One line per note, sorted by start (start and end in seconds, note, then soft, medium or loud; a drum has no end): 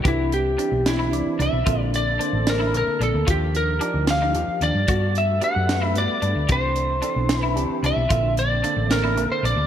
0.03 0.56 C2 medium
0.03 0.50 E3 medium
0.03 0.50 C4 medium
0.03 1.64 C4 medium
0.03 0.50 D4 medium
0.03 3.24 D4 medium
0.03 1.64 E4 medium
0.03 0.21 G4 medium
0.03 0.50 B4 medium
0.03 kick medium
0.03 closed hi-hat medium
0.08 0.31 E4 medium
0.32 0.88 G4 medium
0.32 closed hi-hat soft
0.57 1.04 E3 medium
0.57 1.04 C4 medium
0.57 1.04 D4 medium
0.57 0.76 D4 medium
0.57 1.04 E4 medium
0.57 closed hi-hat soft
0.72 1.12 B1 medium
0.86 1.42 E4 medium
0.86 snare loud
0.86 closed hi-hat medium
0.99 1.16 E4 medium
1.12 1.22 C2 medium
1.12 1.58 E3 medium
1.12 1.58 C4 medium
1.12 1.58 D4 medium
1.12 1.59 D5 medium
1.12 closed hi-hat soft
1.26 muted fingered electric bass stroke soft
1.39 1.49 C2 medium
1.39 1.56 D4 medium
1.39 1.91 E5 medium
1.39 closed hi-hat soft
1.53 1.63 B1 medium
1.65 2.17 A#1 medium
1.65 2.12 D3 medium
1.65 2.12 A#3 medium
1.65 3.25 A#3 medium
1.65 2.12 C4 medium
1.65 1.83 F4 medium
1.65 2.12 A4 medium
1.65 3.26 A4 medium
1.65 kick medium
1.65 closed hi-hat medium
1.94 2.49 D5 medium
1.94 closed hi-hat medium
2.19 2.66 D3 medium
2.19 2.66 A#3 medium
2.19 2.66 C4 medium
2.19 2.37 D4 medium
2.19 2.66 C5 medium
2.19 closed hi-hat medium
2.33 2.75 A1 medium
2.47 2.76 A#4 medium
2.47 snare loud
2.47 closed hi-hat medium
2.60 2.77 E4 medium
2.74 2.84 A#1 medium
2.74 3.20 D3 medium
2.74 3.20 A#3 medium
2.74 3.20 C4 medium
2.74 3.20 A4 medium
2.74 3.00 A#4 medium
2.74 closed hi-hat soft
2.87 muted fingered electric bass stroke soft
3.00 3.10 A#1 medium
3.00 3.18 D4 medium
3.00 3.29 A4 medium
3.00 closed hi-hat medium
3.14 3.24 D2 medium
3.27 3.79 D#2 medium
3.27 3.73 F3 medium
3.27 4.87 F3 medium
3.27 3.73 D4 medium
3.27 3.73 D#4 medium
3.27 3.44 F4 medium
3.27 4.87 F4 medium
3.27 4.87 G4 medium
3.27 3.74 G4 medium
3.27 3.56 G4 medium
3.27 kick medium
3.27 closed hi-hat medium
3.55 4.05 A#4 medium
3.55 closed hi-hat medium
3.80 4.27 F3 medium
3.80 4.27 D4 medium
3.80 3.98 D4 medium
3.80 4.27 D#4 medium
3.80 4.27 G4 medium
3.80 closed hi-hat medium
3.94 4.35 D2 medium
4.07 4.64 F5 medium
4.07 snare loud
4.07 closed hi-hat medium
4.22 4.39 D#4 medium
4.35 4.45 D#2 medium
4.35 4.81 F3 medium
4.35 4.81 D4 medium
4.35 4.81 D#4 medium
4.35 4.81 G4 medium
4.35 closed hi-hat medium
4.48 muted fingered electric bass stroke soft
4.61 4.71 D#2 medium
4.61 4.79 D4 medium
4.61 5.18 D5 medium
4.61 closed hi-hat soft
4.75 4.85 G2 medium
4.88 5.39 G2 medium
4.88 5.35 G3 medium
4.88 6.48 A3 medium
4.88 5.35 B3 medium
4.88 5.06 F#4 medium
4.88 5.35 F#4 medium
4.88 5.35 A4 medium
4.88 6.48 A4 medium
4.88 6.48 B4 medium
4.88 6.48 F#5 medium
4.88 kick medium
4.88 closed hi-hat medium
5.15 5.44 E5 medium
5.15 closed hi-hat soft
5.41 5.88 B3 medium
5.41 5.59 D4 medium
5.41 5.88 F#4 medium
5.41 5.88 G4 medium
5.41 5.88 B4 medium
5.41 5.87 F#5 medium
5.41 closed hi-hat soft
5.56 5.95 F#2 medium
5.69 snare loud
5.69 closed hi-hat medium
5.82 5.99 E4 medium
5.87 5.98 E5 medium
5.95 6.05 G2 medium
5.95 6.41 G3 medium
5.95 6.41 B3 medium
5.95 6.42 F#4 medium
5.95 6.42 B4 medium
5.95 6.52 D5 loud
5.95 closed hi-hat medium
6.10 muted fingered electric bass stroke soft
6.22 6.32 G2 medium
6.22 6.39 D4 medium
6.22 closed hi-hat soft
6.35 6.46 D2 medium
6.49 7.00 C2 medium
6.49 6.95 E3 medium
6.49 6.95 C4 medium
6.49 8.09 C4 medium
6.49 9.67 D4 medium
6.49 6.95 D4 medium
6.49 8.09 E4 medium
6.49 6.66 G4 medium
6.49 6.95 C5 medium
6.49 7.41 C5 medium
6.49 kick medium
6.49 closed hi-hat medium
6.76 closed hi-hat soft
7.02 7.49 E3 medium
7.02 7.49 C4 medium
7.02 7.19 D4 medium
7.02 7.49 D4 medium
7.02 7.49 A4 medium
7.02 closed hi-hat medium
7.16 7.57 B1 medium
7.29 snare medium
7.29 closed hi-hat medium
7.41 7.60 E4 medium
7.41 7.89 B4 medium
7.56 7.67 C2 medium
7.56 8.02 E3 medium
7.56 8.02 C4 medium
7.56 8.02 D4 medium
7.56 8.02 G4 medium
7.56 closed hi-hat medium
7.70 muted fingered electric bass stroke soft
7.83 7.93 C2 medium
7.83 8.01 D4 medium
7.83 8.35 E5 medium
7.83 closed hi-hat soft
7.96 8.07 B1 medium
8.09 8.61 A#1 medium
8.09 8.56 D3 medium
8.09 8.56 A#3 medium
8.09 9.67 A#3 medium
8.09 8.56 C4 medium
8.09 9.67 C4 medium
8.09 8.27 F4 medium
8.09 8.56 A4 medium
8.09 kick medium
8.09 closed hi-hat medium
8.37 8.93 D5 medium
8.37 closed hi-hat medium
8.64 9.10 D3 medium
8.64 9.10 A#3 medium
8.64 9.10 C4 medium
8.64 8.81 D4 medium
8.64 9.10 A4 medium
8.64 closed hi-hat medium
8.76 9.17 A1 medium
8.91 9.32 A#4 medium
8.91 snare loud
8.91 closed hi-hat medium
9.04 9.21 E4 medium
9.17 9.27 A#1 medium
9.17 9.63 D3 medium
9.17 9.63 A#3 medium
9.17 9.63 C4 medium
9.17 9.63 A4 medium
9.17 closed hi-hat soft
9.32 9.45 C5 medium
9.43 9.54 A#1 medium
9.43 9.61 D4 medium
9.43 9.67 D5 medium
9.43 closed hi-hat soft
9.56 9.67 D2 medium